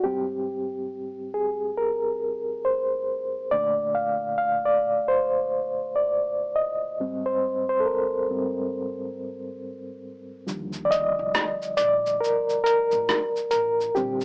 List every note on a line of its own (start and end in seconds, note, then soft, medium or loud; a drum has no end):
0.04 0.66 G#2 soft
0.04 0.66 G3 soft
0.04 0.66 C4 medium
0.04 1.38 G4 medium
1.34 1.54 G#4 medium
1.78 2.67 A#4 medium
2.65 3.54 C5 medium
3.51 6.95 A#2 medium
3.51 6.96 D3 medium
3.51 6.96 A3 soft
3.51 3.96 D5 loud
3.95 4.35 F5 medium
4.38 4.50 F5 medium
4.65 5.10 D5 medium
5.08 5.92 C5 medium
5.96 6.58 D5 medium
6.55 7.28 D#5 medium
7.00 7.61 G#2 soft
7.00 7.61 G3 soft
7.00 7.62 C4 medium
7.26 7.68 C5 medium
7.69 7.81 C5 medium
7.80 7.86 A4 medium
7.86 10.00 A#4 medium
8.30 8.69 G#2 soft
8.30 8.70 G3 soft
8.30 8.70 C4 medium
10.47 11.10 D#2 loud
10.47 13.92 D3 medium
10.47 13.91 F3 medium
10.47 13.91 G3 soft
10.47 shaker medium
10.73 shaker soft
10.85 10.91 D5 medium
10.91 11.80 D#5 loud
10.91 closed hi-hat medium
10.91 shaker soft
11.19 11.33 C2 medium
11.35 cross-stick loud
11.35 shaker medium
11.62 shaker soft
11.77 12.17 A#1 medium
11.77 12.22 D5 loud
11.77 closed hi-hat medium
11.77 shaker medium
12.06 shaker medium
12.21 12.63 A#4 medium
12.21 shaker medium
12.50 shaker medium
12.64 13.49 A#4 medium
12.64 closed hi-hat medium
12.64 shaker soft
12.92 13.07 A1 medium
12.92 shaker medium
13.09 cross-stick loud
13.09 shaker medium
13.36 shaker soft
13.51 13.91 A1 medium
13.51 13.96 A#4 medium
13.51 closed hi-hat medium
13.51 shaker soft
13.81 shaker soft
13.95 14.25 A#1 loud
13.95 14.25 D3 medium
13.95 14.25 G3 medium
13.95 14.25 C4 medium
13.95 14.25 G4 medium
13.95 shaker medium
14.21 shaker soft